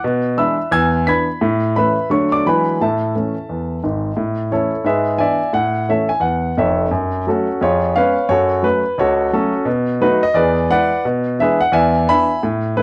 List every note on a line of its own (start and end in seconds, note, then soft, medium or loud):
0.04 0.33 B2 medium
0.37 0.56 E3 soft
0.37 0.56 G#3 soft
0.37 0.57 D4 medium
0.37 0.70 E5 medium
0.37 0.70 B5 medium
0.37 0.71 E6 medium
0.71 1.01 E2 medium
0.71 1.04 G#5 medium
0.71 1.04 E6 medium
0.71 1.06 G#6 loud
1.07 1.26 E3 medium
1.07 1.26 B3 medium
1.07 1.26 D4 medium
1.07 1.40 B5 medium
1.07 1.40 G#6 medium
1.07 1.41 B6 medium
1.41 1.70 A2 medium
1.76 1.95 E3 soft
1.76 1.95 A3 soft
1.76 1.96 C#4 soft
1.76 2.09 B4 medium
1.76 2.08 E5 medium
1.76 2.10 B5 medium
2.10 2.39 D3 medium
2.10 2.29 F#3 soft
2.10 2.30 A3 soft
2.10 2.30 D4 soft
2.10 2.31 C#5 medium
2.10 2.31 C#6 medium
2.32 2.44 D5 medium
2.32 2.45 D6 loud
2.46 2.74 E3 medium
2.46 2.65 F#3 soft
2.46 2.65 G#3 soft
2.46 2.66 D4 soft
2.46 2.78 B4 medium
2.46 2.78 G#5 medium
2.46 2.80 B5 medium
2.81 3.09 A2 medium
2.81 3.80 A4 medium
2.81 3.80 E5 medium
2.81 3.83 A5 medium
3.15 3.34 E3 soft
3.15 3.33 A3 soft
3.15 3.34 C#4 soft
3.49 3.78 E2 medium
3.83 4.10 G#1 medium
3.83 4.10 G#2 medium
4.17 4.46 A2 medium
4.51 4.70 E3 soft
4.51 4.70 A3 soft
4.51 4.70 C#4 soft
4.51 4.84 E4 medium
4.51 4.84 A4 medium
4.51 4.86 C#5 medium
4.84 5.14 G#2 medium
4.84 5.18 G#4 medium
4.84 5.17 B4 medium
4.84 5.19 E5 medium
5.18 5.37 E3 soft
5.18 5.38 B3 soft
5.18 5.38 D4 soft
5.18 5.52 D5 medium
5.18 5.52 E5 medium
5.18 5.53 G#5 medium
5.53 5.83 A2 medium
5.53 5.88 F#5 medium
5.89 6.08 E3 soft
5.89 6.08 A3 soft
5.89 6.08 C#4 soft
5.89 6.09 A4 medium
5.89 6.09 C#5 medium
5.89 6.10 E5 medium
6.09 6.22 G#5 medium
6.20 6.50 E2 medium
6.20 6.56 F#5 medium
6.57 6.85 F1 medium
6.57 6.85 F2 medium
6.57 6.90 A4 medium
6.57 6.90 C#5 medium
6.57 6.92 E5 medium
6.91 7.21 F#2 medium
7.27 7.46 F#3 soft
7.27 7.47 A3 soft
7.27 7.59 C#4 medium
7.27 7.60 F#4 medium
7.27 7.61 A4 medium
7.61 7.90 F2 medium
7.61 7.94 F4 medium
7.61 7.93 G#4 medium
7.61 7.95 C#5 medium
7.95 8.14 G#3 soft
7.95 8.15 B3 soft
7.95 8.15 C#4 medium
7.95 8.28 B4 medium
7.95 8.27 C#5 medium
7.95 8.30 F5 loud
8.29 8.58 F#2 medium
8.29 8.62 F#4 medium
8.29 8.62 A4 medium
8.29 8.63 C#5 loud
8.63 8.82 F#3 soft
8.63 8.82 A3 soft
8.63 8.83 C#4 soft
8.63 8.98 B4 medium
8.98 9.27 C#2 medium
8.98 9.31 F#4 medium
8.98 9.31 A4 medium
8.98 9.33 C#5 medium
9.33 9.52 F#3 medium
9.33 9.52 A3 medium
9.33 9.66 C#4 medium
9.33 9.65 F#4 medium
9.33 9.67 A4 medium
9.65 9.95 B2 medium
10.01 10.20 F#3 soft
10.01 10.21 A3 medium
10.01 10.22 D#4 medium
10.01 10.22 F#4 medium
10.01 10.22 B4 medium
10.23 10.36 D#5 loud
10.34 10.64 E2 medium
10.34 10.68 G#4 medium
10.34 10.68 B4 medium
10.34 10.70 D5 medium
10.70 10.89 E3 medium
10.70 10.89 G#3 soft
10.70 10.90 E4 medium
10.70 11.03 B4 medium
10.70 11.03 D5 medium
10.70 11.05 F#5 loud
11.05 11.34 B2 medium
11.39 11.58 E3 soft
11.39 11.59 G#3 medium
11.39 11.59 D4 medium
11.39 11.60 G#4 medium
11.39 11.60 B4 medium
11.39 11.61 E5 medium
11.61 11.74 F#5 loud
11.72 12.02 E2 medium
11.72 12.06 D5 medium
11.72 12.06 E5 medium
11.72 12.08 G#5 loud
12.07 12.26 E3 medium
12.07 12.27 B3 medium
12.07 12.28 D4 medium
12.07 12.41 E5 medium
12.07 12.41 G#5 medium
12.07 12.43 B5 loud
12.43 12.72 A2 medium
12.76 12.82 E3 soft
12.76 12.82 A3 medium
12.76 12.82 C#4 soft
12.76 12.82 E4 medium
12.76 12.82 B4 medium